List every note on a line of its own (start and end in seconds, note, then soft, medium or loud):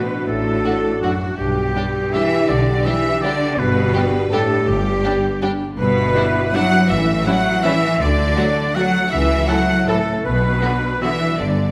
0.00 0.27 A2 medium
0.00 0.28 B2 medium
0.00 1.34 D4 medium
0.00 1.38 F#4 medium
0.00 0.45 F#4 soft
0.00 0.27 B4 medium
0.00 0.28 B4 medium
0.00 0.54 D5 soft
0.00 0.73 F#5 soft
0.00 0.83 D6 soft
0.11 0.36 D4 soft
0.19 1.28 A3 soft
0.27 0.58 A1 medium
0.27 1.02 A2 medium
0.27 1.40 A2 medium
0.27 1.00 A4 medium
0.27 1.03 A4 medium
0.37 1.19 D4 soft
0.46 0.64 F#4 soft
0.55 1.02 D5 soft
0.65 0.73 A3 soft
0.65 0.73 D4 medium
0.65 0.73 F#4 soft
0.65 1.10 F#4 soft
0.74 0.92 F#5 soft
0.84 1.93 D6 medium
0.93 1.40 F#5 soft
1.01 1.37 F#2 medium
1.01 1.11 A3 soft
1.01 1.11 D4 soft
1.01 1.36 F#4 medium
1.01 1.37 F#4 medium
1.01 1.11 F#4 soft
1.01 1.38 F#4 medium
1.01 1.64 D5 soft
1.12 1.40 F#4 soft
1.20 1.46 D4 soft
1.29 1.40 A3 soft
1.37 1.69 B1 medium
1.37 2.11 G2 medium
1.37 2.48 B2 medium
1.37 3.41 D4 medium
1.37 2.15 G4 medium
1.37 1.88 G4 medium
1.37 3.41 G4 medium
1.37 2.13 G4 medium
1.47 2.30 D4 soft
1.56 1.74 G4 soft
1.65 2.12 D5 soft
1.75 1.84 G3 medium
1.75 1.84 D4 medium
1.75 2.21 G4 medium
1.75 1.84 G4 soft
1.85 2.03 G5 soft
1.95 3.03 D6 medium
2.04 2.94 G5 soft
2.13 2.49 E3 medium
2.13 2.22 G3 medium
2.13 2.22 D4 soft
2.13 2.21 G4 medium
2.13 2.75 D5 medium
2.13 2.50 E5 medium
2.13 2.51 E5 medium
2.13 2.48 E5 medium
2.23 2.66 G4 soft
2.31 2.57 D4 medium
2.40 3.49 B3 soft
2.49 2.78 B1 medium
2.49 3.60 B2 medium
2.49 2.85 D3 medium
2.49 2.85 D5 medium
2.49 2.87 D5 medium
2.49 2.85 D5 medium
2.58 3.39 D4 medium
2.67 2.84 G4 medium
2.76 3.22 D5 medium
2.85 3.23 E3 medium
2.85 2.94 G3 medium
2.85 2.94 D4 medium
2.85 3.31 G4 medium
2.85 2.94 G4 medium
2.85 3.23 E5 medium
2.85 3.21 E5 medium
2.85 3.23 E5 medium
2.95 3.13 G5 medium
3.04 4.12 D6 medium
3.14 4.03 G5 medium
3.22 3.58 D3 medium
3.22 3.32 G3 medium
3.22 3.32 D4 medium
3.22 3.31 G4 medium
3.22 3.61 D5 medium
3.22 3.60 D5 medium
3.22 3.84 D5 medium
3.22 3.58 D5 medium
3.32 3.75 G4 medium
3.41 3.66 D4 medium
3.50 5.85 B3 medium
3.58 3.88 G1 medium
3.58 4.66 G2 medium
3.58 4.32 B2 medium
3.58 5.74 D4 medium
3.58 5.74 G4 medium
3.58 4.06 B4 medium
3.58 4.31 B4 loud
3.58 4.06 B4 medium
3.67 4.49 D4 medium
3.76 3.94 G4 medium
3.85 4.30 D5 medium
3.94 4.04 G3 medium
3.94 4.04 D4 medium
3.94 4.02 G4 medium
3.94 4.39 G4 medium
4.04 4.21 G5 medium
4.13 5.21 D6 medium
4.31 4.67 A2 medium
4.31 4.41 G3 medium
4.31 4.41 D4 medium
4.31 4.40 G4 medium
4.31 4.65 A4 medium
4.31 4.67 A4 medium
4.31 4.65 A4 medium
4.31 4.93 D5 medium
4.40 4.83 G4 medium
4.50 4.75 D4 medium
4.58 5.68 D3 medium
4.66 4.97 G1 medium
4.66 5.76 G2 medium
4.66 5.42 G2 medium
4.66 5.39 G4 medium
4.66 5.42 G4 medium
4.66 5.40 G4 medium
4.76 5.59 D4 medium
4.84 5.02 G4 medium
4.94 5.40 D5 medium
5.03 5.12 G3 medium
5.03 5.12 D4 medium
5.03 5.49 G4 medium
5.03 5.12 G4 medium
5.13 5.31 G5 medium
5.23 6.34 D6 medium
5.32 8.01 G5 medium
5.41 5.50 G3 medium
5.41 5.50 D4 medium
5.41 5.50 G4 medium
5.41 6.04 D5 medium
5.50 8.01 G4 medium
5.60 6.91 D4 medium
5.69 5.79 D3 medium
5.77 6.08 G1 medium
5.77 6.91 G2 medium
5.77 6.49 B2 medium
5.77 6.49 B4 medium
5.77 6.50 B4 medium
5.77 6.57 B4 medium
5.87 6.71 B3 medium
5.96 6.62 E4 medium
6.05 6.91 D5 medium
6.14 6.23 G3 medium
6.14 6.28 D4 medium
6.14 6.24 D4 medium
6.14 6.28 E4 medium
6.14 6.24 E4 medium
6.14 6.52 B4 medium
6.25 6.43 E5 medium
6.35 6.91 D6 medium
6.44 7.36 E5 medium
6.53 6.90 F#3 loud
6.53 6.62 G3 medium
6.53 6.66 D4 medium
6.53 6.62 D4 medium
6.53 6.66 E4 medium
6.53 6.62 E4 medium
6.53 6.91 B4 medium
6.53 6.89 F#5 loud
6.53 6.91 F#5 loud
6.53 6.89 F#5 loud
6.63 7.07 E4 medium
6.72 6.91 B3 medium
6.81 6.91 D3 medium
6.89 7.20 A1 medium
6.89 8.02 A2 medium
6.89 7.26 E3 medium
6.89 7.26 E5 medium
6.89 7.28 E5 medium
6.89 7.25 E5 medium
6.99 7.81 A3 medium
7.08 7.72 E4 medium
7.17 8.02 C#5 medium
7.26 7.64 F#3 medium
7.26 7.35 G3 medium
7.26 7.40 C#4 medium
7.26 7.35 C#4 medium
7.26 7.40 E4 medium
7.26 7.35 E4 medium
7.26 7.63 A4 medium
7.26 7.64 F#5 loud
7.26 7.63 F#5 loud
7.26 7.65 F#5 medium
7.37 7.54 E5 medium
7.46 8.02 C#6 medium
7.55 8.02 E5 medium
7.63 8.00 E3 medium
7.63 7.72 G3 medium
7.63 7.72 C#4 medium
7.63 7.77 C#4 medium
7.63 7.72 E4 medium
7.63 7.77 E4 medium
7.63 8.26 A4 medium
7.63 8.03 E5 medium
7.63 8.02 E5 medium
7.63 8.00 E5 loud
7.73 8.01 E4 medium
7.82 8.08 A3 medium
7.91 8.01 E3 medium
7.99 8.30 D2 medium
7.99 8.75 D3 medium
7.99 9.14 D3 medium
7.99 8.73 D5 loud
7.99 8.76 D5 medium
7.99 8.77 D5 medium
8.09 8.93 A3 medium
8.18 8.36 F#4 medium
8.27 8.75 A4 medium
8.37 8.46 F#3 medium
8.37 8.45 A3 medium
8.37 8.51 A3 medium
8.37 8.45 F#4 medium
8.37 8.84 F#4 medium
8.37 8.51 F#4 medium
8.47 8.65 F#5 medium
8.56 9.68 A5 medium
8.66 9.13 F#5 medium
8.75 9.11 F#3 medium
8.75 8.84 F#3 medium
8.75 8.84 A3 medium
8.75 8.90 A3 medium
8.75 8.83 F#4 medium
8.75 8.90 F#4 medium
8.75 9.38 A4 medium
8.75 9.14 F#5 medium
8.75 9.11 F#5 loud
8.75 9.11 F#5 medium
8.85 9.13 F#4 medium
8.95 9.20 A3 medium
9.03 9.13 D4 medium
9.11 9.42 C#2 medium
9.11 10.26 C#3 medium
9.11 9.48 E3 medium
9.11 9.48 E5 loud
9.11 9.50 E5 medium
9.11 9.48 E5 medium
9.21 10.06 A3 medium
9.30 9.48 E4 medium
9.39 9.87 A4 medium
9.48 9.57 E3 medium
9.48 9.88 F#3 medium
9.48 9.57 A3 medium
9.48 9.63 A3 medium
9.48 9.97 E4 medium
9.48 9.63 E4 medium
9.48 9.56 A4 medium
9.48 9.90 F#5 medium
9.48 9.88 F#5 loud
9.48 9.89 F#5 medium
9.59 9.78 E5 medium
9.69 10.26 A5 medium
9.79 10.26 E5 medium
9.87 10.24 A2 medium
9.87 9.97 E3 medium
9.87 10.00 A3 medium
9.87 9.96 A3 medium
9.87 10.00 E4 medium
9.87 10.24 A4 medium
9.87 10.26 A4 medium
9.87 9.96 A4 medium
9.87 10.26 A4 medium
9.87 10.24 A4 medium
9.98 10.26 E4 medium
10.07 10.26 A3 medium
10.16 10.26 C#4 medium
10.24 10.55 B1 medium
10.24 11.00 B2 medium
10.24 11.41 B2 medium
10.24 11.04 B4 medium
10.24 11.01 B4 medium
10.34 11.19 B3 medium
10.44 11.10 D4 medium
10.53 11.40 F#4 medium
10.62 10.70 D3 medium
10.62 10.76 F#3 medium
10.62 10.70 B3 medium
10.62 10.77 D4 medium
10.62 10.70 F#4 medium
10.62 11.01 B4 medium
10.73 10.91 D5 medium
10.83 11.40 F#5 medium
10.92 11.71 D5 medium
11.02 11.10 D3 medium
11.02 11.38 E3 medium
11.02 11.16 F#3 medium
11.02 11.10 B3 medium
11.02 11.16 D4 medium
11.02 11.10 F#4 medium
11.02 11.71 B4 medium
11.02 11.38 E5 medium
11.02 11.39 E5 medium
11.02 11.38 E5 medium
11.11 11.56 D4 soft
11.20 11.46 B3 soft
11.29 11.40 F#3 soft
11.38 11.69 G1 medium
11.38 11.71 G2 medium
11.38 11.71 D3 medium
11.38 11.71 D5 medium
11.47 11.71 B3 soft
11.57 11.71 D4 soft
11.67 11.71 G4 soft